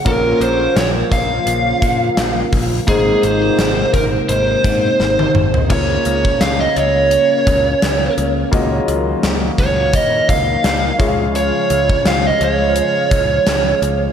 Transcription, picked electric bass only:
X:1
M:4/4
L:1/16
Q:"Swing 16ths" 1/4=85
K:Bbm
V:1 name="Picked electric bass" clef=bass
B,,,2 B,,,2 B,,,2 B,,,2 B,,,2 B,,2 B,,,2 B,,,2 | A,,,2 A,,,2 A,,,2 A,,,2 A,,,2 A,,2 A,,,2 A,,,2 | D,,2 D,,2 D,,2 D,,3 z D,,2 D,,2 D,,2 | D,,2 D,,2 D,,2 D,,3 z D,,2 D,,2 D,,2- |
D,,2 D,,2 D,,2 D,,3 z D,,2 D,,2 D,,2 |]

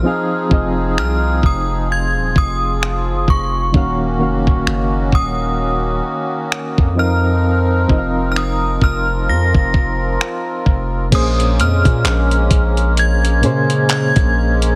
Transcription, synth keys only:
X:1
M:4/4
L:1/8
Q:"Swing 16ths" 1/4=65
K:Bbm
V:1 name="Synth keys"
[F,CEAf] [F,CEAe]3 z4 | [E,B,DGf] [E,B,DGf]3 z3 [F,CEBf]- | [F,CEBf] [F,CEBef]3 z4 | [B,,B,DAc]3 z2 [B,,B,DAc]2 z |]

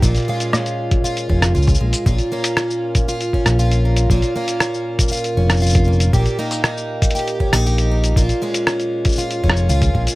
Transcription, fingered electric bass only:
X:1
M:4/4
L:1/16
Q:1/4=118
K:Bbdor
V:1 name="Fingered electric bass" clef=bass
B,,, z8 z F,,,2 D,,2 B,,, z | B,,, z8 z2 B,,,4- B,,, | B,,, z8 z F,,,6 | B,,, z8 z2 B,,,4- B,,, |
B,,, z8 z F,,,2 D,,2 B,,, z |]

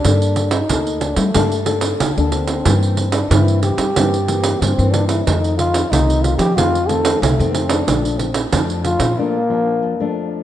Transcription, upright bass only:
X:1
M:4/4
L:1/16
Q:1/4=92
K:Bb
V:1 name="Upright bass" clef=bass
G,,4 D,,3 G, G,,4 D,, D,,3 | G,,4 G,,3 G, G,,4 G,, G,,3 | F,,4 C,,3 F, F,,4 C,, F,,3 | B,,,4 F,,3 B,, z8 |]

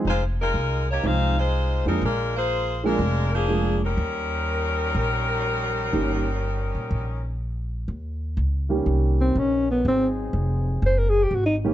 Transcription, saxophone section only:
X:1
M:4/4
L:1/8
Q:"Swing" 1/4=123
K:Ebmix
V:1 name="Saxophone section"
[A,EFc] [A,EFB]2 [B,EGd] [EAcf] [A,EFc]2 [G,CEB] | [A,=DFB] [B,FAc]2 [A,DFB]2 [F,B,DA]2 [G,_DEB]- | [G,DEB]8- | [G,DEB]6 z2 |
z8 | z8 |]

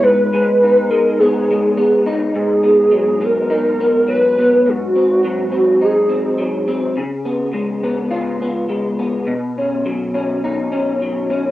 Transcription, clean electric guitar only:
X:1
M:4/4
L:1/8
Q:"Swing 16ths" 1/4=104
K:G#m
V:1 name="Clean electric guitar"
G,, G, D G, B, G, B, D | [K:G#dor] G,, B, F, B, D B, F, B, | G,, ^B, F, B, D B, F, B, | C, B, G, B, E B, G, B, |
B,, C F, C D C F, C |]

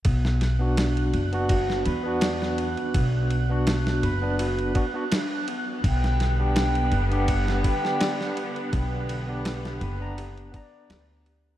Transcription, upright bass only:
X:1
M:4/4
L:1/8
Q:"Swing 16ths" 1/4=83
K:Bm
V:1 name="Upright bass" clef=bass
B,,,3 F,,,2 E,,2 z | B,,,3 F,,,2 z3 | B,,,3 F,,,2 z3 | B,,,3 F,,,2 z D,,2 |]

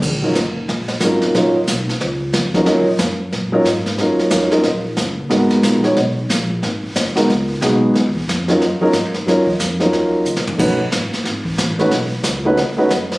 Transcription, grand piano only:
X:1
M:4/4
L:1/8
Q:"Swing" 1/4=182
K:Ebm
V:1 name="Grand piano"
z [G,DEFB] z4 [G,DEFB]2 | [G,DEFB] z6 [G,DEFB] | [G,DEFB] z4 [G,DEFB] z2 | [G,DEFB]3 [G,DEFB] z4 |
[A,CEGB]3 [A,CEGd] z4 | z3 [A,CEGB] z2 [A,CEGA]2 | z3 [G,DEFB] z [G,DEFB] z2 | [G,DEFB] z2 [G,DEFB]3 z2 |
[=A,D^D^F=B] z6 [A,_D^DFB] | z3 [=A,D^D^F=B] z [A,_D^DFB] z2 |]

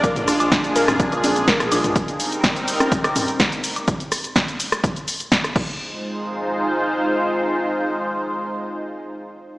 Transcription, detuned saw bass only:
X:1
M:4/4
L:1/16
Q:1/4=125
K:Fdor
V:1 name="Detuned saw bass" clef=bass
z B,,, B,,, B,,, z B,,, B,,, B,,, z B,,, B,,, B,,, z B,,, B,,, B,,, | z16 | z16 | z16 |
z16 |]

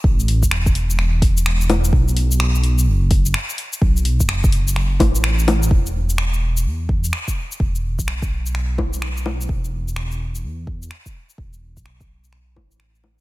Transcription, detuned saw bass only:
X:1
M:4/4
L:1/16
Q:"Swing 16ths" 1/4=127
K:Bphr
V:1 name="Detuned saw bass" clef=bass
A,,,3 E,,,12- E,,, | B,,,8 F,,,4 z4 | B,,,3 F,,,6- F,,, A,,,6 | E,,,8 E,,4 z4 |
E,,,3 B,,,12- B,,, | E,,,8 E,,4 z4 | E,,,3 B,,,4- B,,, B,,,2 A,,,6 |]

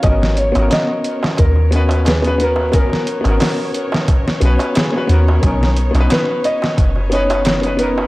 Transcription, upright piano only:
X:1
M:4/4
L:1/16
Q:"Swing 16ths" 1/4=89
K:Abdor
V:1 name="Upright piano"
[CDGB]3 [CDGB]6- [CDGB] [CDGc] z2 [CDGc] [CDGB]2 | [CDGB]3 [CDGB]6- [CDGB] [CDGc] z2 [CDGc] [CDGB]2 | [=B,^C^D^A]3 [B,CD=B]6- [B,CDB] [B,CDB] z2 [B,CDB] [B,CDA]2 |]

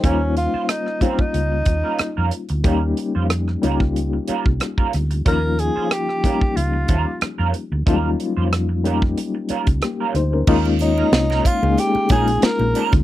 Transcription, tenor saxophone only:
X:1
M:4/4
L:1/16
Q:"Swing 16ths" 1/4=92
K:Ebmix
V:1 name="Tenor saxophone"
D2 F2 E2 C E6- E z2 | z16 | B2 A2 G4 F4 z4 | z16 |
z2 E4 F2 G2 A2 B3 z |]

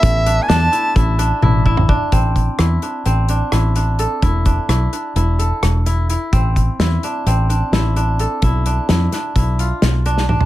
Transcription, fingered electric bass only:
X:1
M:9/8
L:1/8
Q:3/8=86
K:Am
V:1 name="Fingered electric bass" clef=bass
A,,,2 E,, z A,,,2 A,,,3 | A,,,2 E,, z A,,,2 A,,,3 | E,,,2 B,,, z E,,,2 E,,,3 | A,,,2 E,, z A,,,2 A,,,3 |
B,,,2 F,, z B,,,2 B,,,3 |]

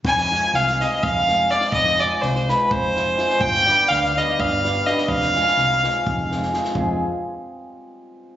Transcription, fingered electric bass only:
X:1
M:7/8
L:1/8
Q:1/4=125
K:none
V:1 name="Fingered electric bass" clef=bass
F,,,2 C,,2 F,,,3 | F,,,2 C,,2 F,,,3 | G,,,2 D,,2 G,,,3 | F,,,2 C,,2 F,,,3 |
F,,, z6 |]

